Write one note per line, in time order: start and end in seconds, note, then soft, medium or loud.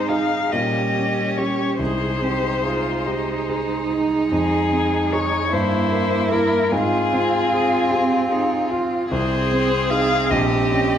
0.00 0.49 G#2 soft
0.00 0.54 G#3 soft
0.00 0.35 C4 soft
0.00 0.49 D#4 soft
0.00 0.56 D#4 soft
0.08 0.49 D#4 soft
0.08 0.49 G#4 soft
0.08 0.53 F5 medium
0.52 1.76 A#2 soft
0.52 1.79 G3 soft
0.52 1.81 C#4 soft
0.52 1.77 G4 soft
0.52 1.39 D#5 soft
0.96 1.36 C#4 soft
1.38 1.76 C#4 soft
1.38 1.76 G4 soft
1.38 1.79 C#5 soft
1.79 4.27 C2 soft
1.79 5.49 G#3 soft
1.79 5.51 D#4 soft
1.79 2.25 G#4 soft
1.79 3.87 C5 medium
2.21 2.90 C4 soft
2.21 2.64 G4 soft
2.65 3.08 F4 soft
2.65 3.32 G#4 soft
3.07 5.54 D#4 medium
3.07 3.49 G4 soft
3.50 4.16 G#4 soft
3.91 4.32 D#4 soft
4.31 5.49 F2 soft
4.31 5.14 G#4 medium
4.72 5.36 C4 soft
5.12 5.48 D#4 soft
5.12 5.49 G#4 soft
5.12 5.55 C#5 medium
5.52 6.69 G2 soft
5.52 6.73 A#3 soft
5.52 6.73 E4 soft
5.52 6.71 E4 medium
5.52 6.30 C5 soft
5.92 6.56 A#3 soft
6.31 6.68 E4 soft
6.31 6.73 A#4 medium
6.31 6.68 A#4 soft
6.71 9.07 G#2 soft
6.71 9.11 C4 soft
6.71 9.11 F4 soft
6.71 7.93 F4 medium
6.71 8.71 G#4 medium
7.13 7.76 C4 soft
7.53 8.16 G#4 soft
7.91 8.33 C4 soft
7.91 8.31 G4 soft
8.31 8.73 D#4 soft
8.31 8.96 G#4 soft
8.71 9.11 F4 soft
8.71 9.12 F4 soft
9.11 10.27 C2 soft
9.11 10.98 C4 soft
9.11 10.33 G#4 soft
9.11 10.33 G#4 medium
9.11 9.91 C5 medium
9.52 10.15 C4 soft
9.90 10.27 D#4 soft
9.90 10.27 G#4 soft
9.90 10.32 F5 medium
10.30 10.98 A#1 soft
10.30 10.98 G4 soft
10.30 10.98 G4 medium
10.30 10.98 D#5 medium
10.72 10.98 C#4 soft